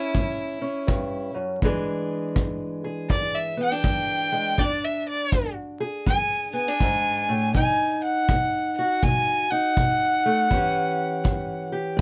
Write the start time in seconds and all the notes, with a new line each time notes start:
Already playing: C#4 E4
0.14 A2, kick
0.61 C#4
0.87 G2, kick
1.34 F#2
1.62 E2 E3 G#3 D4 G#4, kick
2.35 E2, kick
2.84 G#4
3.10 E2 D5, kick
3.35 E5
3.57 B3
3.63 G5
3.71 D4
3.84 E2, kick
4.32 G#3
4.58 E2 D4 D5, kick
4.84 E5
5.09 D5
5.32 E2, kick
5.80 G#4
6.07 E2 G#5, kick
6.53 B3 G#5
6.68 D4
6.80 G#2, kick
7.29 A2
7.55 B2 D#4 G#5, kick
8.03 F#5
8.29 B2, kick
8.77 F#4 F#5
9.03 B2 G#5, kick
9.50 D#4 F#5
9.77 B2, kick
10.26 A3
10.50 A2 E3 C#4 G4, kick
11.24 A2, kick
11.72 G4
11.97 A2